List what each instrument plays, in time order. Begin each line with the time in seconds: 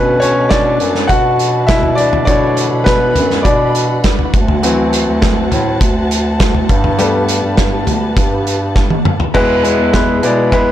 Already playing: bass clarinet B2, grand piano D3 A3 B3 C#4 B4, string section F#4 B4 F#5 A5
0.20 grand piano C#4 C#5, closed hi-hat
0.36 bass clarinet B2
0.49 grand piano D4 D5, kick, snare, closed hi-hat
0.80 bass clarinet F#2, closed hi-hat
0.95 snare
1.08 bass clarinet B2, grand piano F#4 F#5, kick, closed hi-hat
1.39 closed hi-hat
1.67 grand piano E4 E5, kick, snare, closed hi-hat
1.83 floor tom
1.95 grand piano D4 D5, closed hi-hat
2.13 floor tom
2.25 bass clarinet B2, grand piano D3 A3 D4 C#5 D5, string section B5, kick, closed hi-hat
2.57 closed hi-hat
2.71 bass clarinet B2
2.84 grand piano B3 B4, kick, snare, closed hi-hat
3.15 bass clarinet F#2, closed hi-hat, floor tom
3.31 snare
3.43 bass clarinet B2, grand piano D4 D5, kick, closed hi-hat
3.75 closed hi-hat
4.04 kick, snare, closed hi-hat
4.19 floor tom
4.33 bass clarinet D2, string section C5 A5, kick, closed hi-hat
4.48 floor tom
4.63 grand piano E3 F#3 C4, closed hi-hat
4.93 closed hi-hat
5.07 bass clarinet D2
5.22 kick, snare, closed hi-hat
5.52 bass clarinet A2, closed hi-hat, floor tom
5.81 bass clarinet D2, kick, closed hi-hat
6.11 closed hi-hat
6.40 kick, snare, closed hi-hat
6.54 floor tom
6.69 bass clarinet G2, string section G4 B4, kick, closed hi-hat
6.84 floor tom
6.98 grand piano G3 A3 B3, closed hi-hat
7.29 closed hi-hat
7.43 bass clarinet G2
7.57 kick, snare, closed hi-hat
7.87 bass clarinet D2, closed hi-hat, floor tom
8.16 bass clarinet G2, kick, closed hi-hat
8.47 closed hi-hat
8.76 kick, snare
8.90 high tom
9.05 mid tom
9.20 floor tom
9.34 bass clarinet E2, grand piano B2 G#3 B3 E4 B4, string section G#4 B4 E5 B5, kick, crash
9.64 grand piano G#3 B3 E4 B4, closed hi-hat
9.79 bass clarinet E2
9.93 grand piano G#3 B3 E4 B4, kick, snare, closed hi-hat
10.23 bass clarinet B2, grand piano G#3 B3 E4 D5, closed hi-hat
10.52 bass clarinet E2, grand piano G#3 B3 E4 B4, kick, closed hi-hat